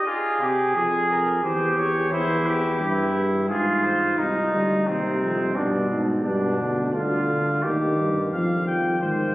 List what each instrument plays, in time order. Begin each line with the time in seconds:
0.07 trumpet F4 G#4
0.41 bass trombone C3, trumpet G4
0.75 bass trombone F2, trumpet G#4
1.10 trumpet A#4
1.43 bass trombone E2, trumpet G4 C5
1.78 trumpet C#5
2.12 bass trombone E2, trumpet E4 C5
2.46 trumpet G4
2.80 bass trombone G2, trumpet E4
3.49 bass trombone G#2, trumpet F4 G#4
3.84 trumpet C5
4.18 bass trombone C2, trumpet D#4
4.52 bass trombone D2, euphonium G3
4.86 bass trombone D#2, euphonium C3, trumpet C4
5.21 bass trombone F2
5.55 bass trombone G2, euphonium B2, trumpet D4
5.90 bass trombone G#2
6.24 bass trombone G2, euphonium B2, trumpet D4
6.59 bass trombone D2
6.93 euphonium D3, trumpet F4
7.63 bass trombone D#2, euphonium D#3, trumpet G4
7.97 bass trombone G2
8.32 bass trombone F2, euphonium F3, trumpet F5
8.67 trumpet G5
9.01 bass trombone G#2, euphonium D#3, trumpet C5